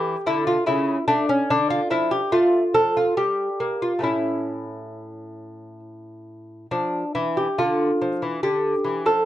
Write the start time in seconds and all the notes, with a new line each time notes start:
Already playing: E3 G4
0.26 D3 E4
0.47 F4
0.66 C#3 E4
1.08 A3 D4
1.29 C#4
1.50 D3 D4
1.70 F4
1.90 F3 E4
2.11 G4
2.32 A3 F4
2.74 F3 A4
2.97 F4
3.17 G3 G4
3.60 A#3
3.82 F4
3.99 A2 C#4
4.04 E4
6.71 F3 D4
7.15 E3 E4
7.37 G4
7.58 D3 F4
8.02 F3
8.22 E3
8.43 D3 G4
8.84 E3
9.06 F3 A4